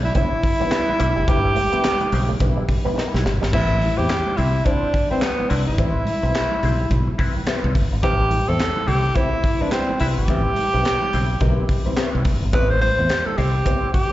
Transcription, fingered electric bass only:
1.00 B1
1.17 F#1
1.28 G1
1.74 muted fingered electric bass stroke
2.12 B1
2.41 B1
3.14 B1
3.26 G1
3.43 G#1
3.53 A1
3.99 E2
4.38 C2
5.51 C2
5.67 G#1
5.78 A1
6.23 B1
6.63 B1
6.91 B1
7.64 C2
7.76 G1
7.92 G#1
8.03 A1
8.49 E2
8.88 C2
10.01 C2
10.18 G#1
10.28 A1
10.74 B1
11.14 B1
11.41 B1
12.15 C2
12.25 G1
12.43 G#1
12.54 A1
12.99 E2
13.38 C2

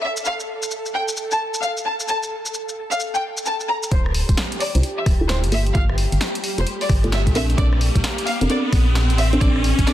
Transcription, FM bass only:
3.92 D1
4.29 D1
4.75 C2
5.06 D1
5.44 G1
5.75 G1
6.12 G1
6.58 F1
6.89 G1
7.27 A#1
7.58 A#1
7.95 A#1
8.41 F1
8.72 A#1
9.10 A1
9.41 A1
9.79 A1

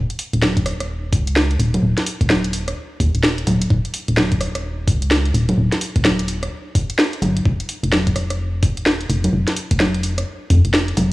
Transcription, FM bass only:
0.33 D#1
1.13 C#2
1.59 D#1
1.83 D#1
2.21 D#1
3.00 D#2
3.15 D#1
3.47 D#1
3.70 D#1
4.08 D#1
4.87 C#2
5.34 D#1
5.58 D#1
5.96 D#1
7.22 G1
7.46 F1
7.83 F1
8.63 D#1
9.10 F1
9.33 F1
9.71 F1
10.50 F2
10.65 F1
10.97 F1

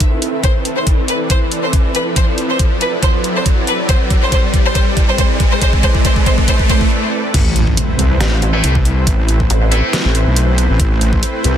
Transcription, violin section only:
0.43 C5
0.77 C5
1.08 B4
1.30 C5
1.63 C5
1.95 B4
2.16 C5
2.50 C5
2.81 B4
3.03 C5
3.36 C5
3.67 B4
3.89 C5
4.22 C5
4.32 C5
4.65 C5
4.75 C5
5.08 C5
5.18 C5
5.51 C5
5.61 C5
5.83 C5
6.05 C5
6.26 C5
6.48 C5
6.69 C5

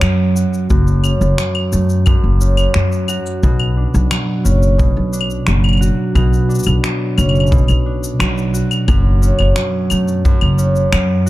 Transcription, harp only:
Already playing: F#2 A3 C#4 F#4
0.02 F#3
0.36 F#4
0.70 F#2 F#4
1.04 C#4
1.38 F#3
1.72 A3
2.06 F#2
2.41 C#4
2.74 F#3
3.09 F#4
3.43 B2 F#4
3.77 D4
4.11 F#3
4.44 C#4
4.78 B2
5.13 D4
5.46 F#3
5.81 F#4
6.15 B2 F#4
6.49 D4
6.83 F#3
7.17 C#4
7.51 B2
7.86 D4
8.20 F#3
8.54 F#4
8.88 F#2 F#4
9.22 C#4
9.57 F#3
9.91 A3
10.25 F#2
10.58 C#4
10.93 F#3
11.26 F#4

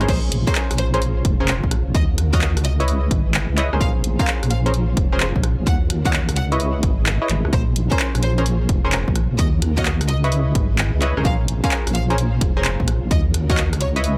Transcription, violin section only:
0.09 C5
0.47 C5
0.78 C5
1.94 D#5
2.33 D#5
2.64 D#5
3.81 F5
4.19 F5
4.50 F5
5.67 F#5
6.06 F#5
6.37 F#5
7.53 C5
7.91 C5
8.22 C5
9.39 D#5
9.77 D#5
10.08 D#5
11.25 F5
11.64 F5
11.95 F5
13.11 D#5
13.50 D#5
13.80 C#5

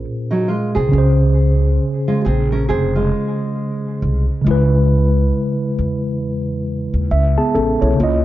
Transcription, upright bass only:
0.76 C2
0.93 C#2
2.26 A#1
2.70 F1
4.02 C2
4.46 C#2
5.79 E2
6.94 D#2
7.11 C#2
7.55 A1
7.82 B1
8.00 C#2

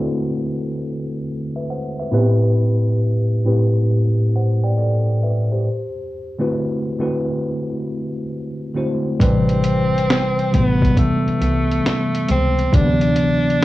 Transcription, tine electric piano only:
Already playing: D3 A3 C4 E4 F#4 A4 B4
1.56 B4 E5
1.70 C5 F#5
2.00 B4 E5
2.11 A2 B3 E4 G4 B4
2.18 C4
3.45 A2 C4 E4 G4 B4
4.36 C5 F#5
4.64 D5 G5
4.78 A4 D5
5.23 B4 E5
5.52 G4 C5
6.39 D3 A3 C4 E4 F#4 B4
6.99 D3 A3 C4 E4 F#4 B4
8.75 D3 A3 C4 E4 F#4 C5
9.19 C3 E3 G3 B4
10.51 C3 E3 G3 B3
10.81 C3 E3 G3 B3
12.72 C3 E3 F#3 A#3
12.82 B3

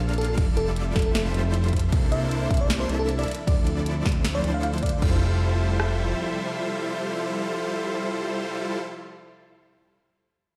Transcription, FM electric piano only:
0.18 A4
0.28 A4
0.57 A4
0.95 A4
1.06 A4
1.15 A4
2.12 E5
2.51 E5
2.61 D5
2.80 C5
2.99 A4
3.19 D5
3.47 D5
4.35 D5
4.54 F5
4.63 F5
4.83 D5

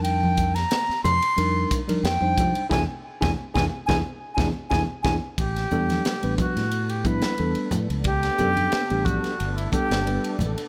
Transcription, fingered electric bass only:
Already playing: F2
0.89 muted fingered electric bass stroke
1.05 F2
1.38 F2
1.89 muted fingered electric bass stroke
2.03 F2
2.21 F2
2.38 F3
2.71 E2
3.23 E2
3.56 E2
3.89 E2
4.38 E2
4.72 E2
5.04 E2
5.38 A1
5.72 E2
6.24 A1
6.56 A2
7.40 E2
7.56 muted fingered electric bass stroke
7.72 A2
7.90 C#2
8.40 F#2
8.73 muted fingered electric bass stroke
8.91 A1
9.40 G1
9.91 G1
10.40 A1

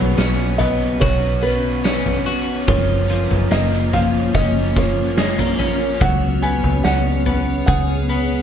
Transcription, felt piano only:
Already playing: B4
0.58 D#5
1.00 C#5
1.42 B4
2.69 C#5
3.52 D#5
3.94 F5
4.35 D#5
4.78 C#5
6.02 F#5
6.42 G#5
6.84 F#5
7.66 F#5

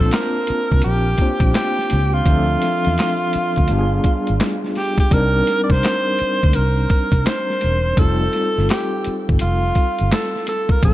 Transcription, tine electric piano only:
Already playing: A#3 C4 D4 F4 A5
1.20 A#3 C4 D4 F4 C5
2.26 F3 C4 D4 E5
2.30 A4
3.68 G3 B3 D4 F4
3.72 G4
3.79 G#4
5.11 G3 C4 D4 D#4
5.15 A#4
7.98 G3 C4 D#4 F4 A4
10.83 F3 A#3 C4 C#4
10.87 A4

